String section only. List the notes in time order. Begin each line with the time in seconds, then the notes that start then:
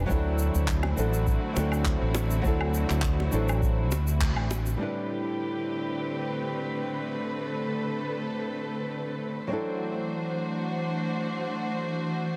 0.10 D3 A3 C4 E4 F#4
4.79 D3 A3 C4 G4 B4
7.14 A4
9.50 E3 A3 D4 F#4 C5